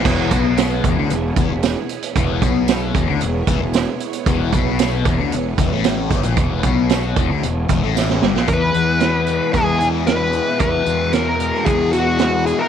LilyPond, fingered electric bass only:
\new Staff \with { instrumentName = "Fingered electric bass" } { \clef bass \time 4/4 \key e \major \tempo 4 = 114 e,,8 b,,4 e,,16 d,16 e,,8 e,,16 e,,8 r8. | e,,8 b,,4 e,,16 d,16 e,,8 e,,16 e,,8 r8. | e,,8 b,,4 e,,16 d,16 e,,8 e,,16 a,,8. g,,16 ais,,16 | e,,8 b,,4 e,,16 d,16 e,,8 e,,16 a,,8. g,,16 ais,,16 |
e,8 e,4. e,2 | e,8 e,4. e,2 | }